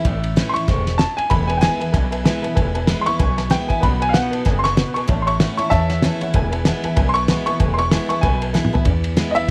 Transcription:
Already playing: upright piano E6
0.05 upright bass A1, steel-string acoustic guitar A2, kick, ride
0.24 ride
0.36 steel-string acoustic guitar E3 A3 C#4 E4, snare, ride
0.49 upright piano C6
0.54 steel-string acoustic guitar C#4 E4, upright piano C#6, muted upright bass stroke, ride
0.68 upright bass E1, steel-string acoustic guitar G#2, kick, snare, ride
0.87 snare, ride
0.98 steel-string acoustic guitar F#2, upright piano A5, snare, ride
1.17 upright piano G#5, muted upright bass stroke, ride
1.30 upright bass E1, steel-string acoustic guitar E2, honky-tonk piano B4 E5 G#5, upright piano B5, kick, ride
1.47 honky-tonk piano B4 E5 G#5, upright piano G#5, ride
1.57 steel-string acoustic guitar E3, upright piano G5 G#5
1.62 steel-string acoustic guitar G#3 B3 E4, honky-tonk piano B4 E5 G#5, snare, ride
1.80 steel-string acoustic guitar B3 E4, honky-tonk piano B4 E5 G#5, muted upright bass stroke, ride
1.92 upright bass B1, steel-string acoustic guitar B2, honky-tonk piano B4 E5 G#5, kick, snare, ride
2.11 honky-tonk piano B4 E5 G#5, ride
2.24 steel-string acoustic guitar E3 G#3 B3 E4, honky-tonk piano B4 E5 G#5, snare, ride
2.42 steel-string acoustic guitar B3 E4, honky-tonk piano B4 E5 G#5, muted upright bass stroke, ride
2.55 upright bass E1, steel-string acoustic guitar E2, honky-tonk piano B4 E5 G#5, kick, ride
2.74 honky-tonk piano B4 E5 G#5, ride
2.87 steel-string acoustic guitar E3 G#3 B3 E4, honky-tonk piano B4 E5 B5, snare, ride
3.01 upright piano C6
3.06 steel-string acoustic guitar B3 E4, honky-tonk piano B4 E5 B5, upright piano C#6, muted upright bass stroke, ride
3.19 upright bass B1, steel-string acoustic guitar B2, honky-tonk piano B4 E5 G#5, kick, ride
3.37 honky-tonk piano B4 E5 G#5, snare, ride
3.50 steel-string acoustic guitar E3 G#3 B3 E4, honky-tonk piano B4 E5 F#5, upright piano G5, snare, ride
3.68 steel-string acoustic guitar B3 E4, honky-tonk piano B4 E5 G#5, upright piano G#5, muted upright bass stroke, kick, ride
3.80 upright bass B1, steel-string acoustic guitar B2, honky-tonk piano B4 D#5 F#5, upright piano B5, kick, ride
3.99 honky-tonk piano B4 D#5 F#5, upright piano G#5, ride
4.09 honky-tonk piano D#5, upright piano F5
4.13 steel-string acoustic guitar F#3 B3 D#4 F#4, honky-tonk piano B4 F#5, upright piano F#5, snare, ride
4.31 honky-tonk piano B4 D#5 A5, muted upright bass stroke, ride
4.45 upright bass F#1, steel-string acoustic guitar C#3, honky-tonk piano B4 D#5 G#5, kick, snare, ride
4.59 upright piano C6
4.64 honky-tonk piano B4 D#5 G#5, upright piano C#6, snare, ride
4.77 steel-string acoustic guitar B2, honky-tonk piano B4 D#5 F#5, snare, ride
4.94 honky-tonk piano B4 D#5 G#5, upright piano C#6, muted upright bass stroke, ride
5.08 upright bass A1, steel-string acoustic guitar A2, honky-tonk piano C#5 E5 A5, kick, ride
5.22 honky-tonk piano C#5, upright piano C6
5.27 honky-tonk piano E5 A5, upright piano C#6, ride
5.39 steel-string acoustic guitar E3 A3 C#4 E4, honky-tonk piano C#5 E5 F#5, snare, ride
5.57 steel-string acoustic guitar C#4 E4, honky-tonk piano C#5 E5 A5, upright piano C#6, muted upright bass stroke, ride
5.70 upright bass E2, steel-string acoustic guitar E2, honky-tonk piano C#5 E5 A5, upright piano E5 A5, kick, snare, ride
5.89 honky-tonk piano C#5 E5 F#5, snare, ride
6.02 steel-string acoustic guitar E3 A3 C#4 E4, honky-tonk piano C#5 E5 A5, snare, ride
6.21 steel-string acoustic guitar C#4 E4, honky-tonk piano C#5 E5 F#5, muted upright bass stroke, ride
6.34 upright bass E1, steel-string acoustic guitar E2, honky-tonk piano B4 E5 G#5, kick, ride
6.52 honky-tonk piano B4 E5 G#5, ride
6.65 steel-string acoustic guitar E3 G#3 B3 E4, honky-tonk piano B4 E5 G#5, snare, ride
6.83 steel-string acoustic guitar B3 E4, honky-tonk piano B4 E5 G#5, muted upright bass stroke, ride
6.96 upright bass B1, steel-string acoustic guitar B2, honky-tonk piano B4 E5 G#5, kick, ride
7.09 upright piano C6
7.14 honky-tonk piano B4 E5 G#5, upright piano C#6, ride
7.28 steel-string acoustic guitar E3 G#3 B3 E4, honky-tonk piano B4 E5 G#5, snare, ride
7.46 steel-string acoustic guitar B3 E4, honky-tonk piano B4 E5 G#5, upright piano C#6, muted upright bass stroke, ride
7.60 upright bass E1, steel-string acoustic guitar E2, honky-tonk piano B4 E5 G#5, kick, ride
7.74 honky-tonk piano B4 E5, upright piano C6
7.78 honky-tonk piano G#5, upright piano C#6, ride
7.91 steel-string acoustic guitar E3 G#3 B3 E4, honky-tonk piano B4 E5 G#5, snare, ride
8.09 steel-string acoustic guitar B3 E4, honky-tonk piano B4 E5 G#5, upright piano C#6, muted upright bass stroke, ride
8.21 upright bass B1, steel-string acoustic guitar B2, honky-tonk piano B4 E5 B5, upright piano G#5, kick, ride
8.42 honky-tonk piano B4 E5 G#5, ride
8.53 steel-string acoustic guitar E3 G#3 B3 E4, honky-tonk piano B4 E5 G#5, snare
8.65 mid tom
8.73 steel-string acoustic guitar B3 E4, honky-tonk piano B4 E5 G#5, floor tom
8.85 steel-string acoustic guitar E2, upright bass E2, kick, ride
9.04 ride
9.17 steel-string acoustic guitar E3 G#3 B3 E4, snare, ride
9.31 upright piano D#5
9.35 steel-string acoustic guitar B3 E4, upright piano E5, muted upright bass stroke, ride

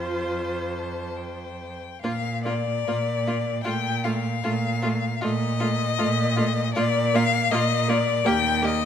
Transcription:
Already playing: cello F2, viola F4, violin C5
0.78 violin A5
1.17 violin G5
2.02 cello A#2, viola A#3, violin F4 F5
2.44 viola A#3, violin F4 D5
2.87 cello A#2, viola A#3, violin F4
3.27 viola A#3, violin F4
3.64 cello A#2, viola A3, violin F4 G5
4.04 viola A3, violin F4 F5
4.44 cello A#2, viola A3, violin F4
4.82 viola A3, violin F4
5.21 cello A#2, viola A3, violin F4 D#5
5.60 viola A3, violin F4
5.99 cello A#2, viola A3, violin F4
6.36 viola A3, violin F4
6.74 cello A#2, viola A#3, violin F4 D5
7.14 viola A#3, violin F4 F5
7.51 cello A#2, viola A#3, violin F4 D#5
7.88 viola A#3, violin F4 D5
8.25 cello D#2, viola A#3, violin G4 G5
8.62 viola A#3, violin G4 D#5

